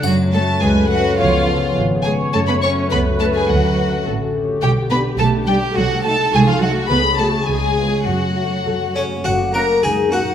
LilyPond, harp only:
\new Staff \with { instrumentName = "Harp" } { \time 2/4 \key fis \minor \tempo 4 = 104 \tuplet 3/2 { fis,8 cis'8 fis'8 a'8 fis'8 cis'8 } | \tuplet 3/2 { cis8 cis'8 gis'8 b'8 gis'8 cis'8 } | \tuplet 3/2 { fis,8 cis'8 fis'8 a'8 fis'8 cis'8 } | \tuplet 3/2 { d8 cis'8 fis'8 a'8 fis'8 cis'8 } |
\tuplet 3/2 { b,8 b8 d'8 b'8 d'8 b8 } | \tuplet 3/2 { c8 a8 ees'8 ges'8 ees'8 a8 } | \tuplet 3/2 { cis8 cis'8 <cis' fis'>8 cis8 b8 <cis' eis'>8 } | \tuplet 3/2 { fis,8 a8 cis'8 fis'8 cis'8 a8 } |
\key fis \major <fis, ais cis' fis'>2 | }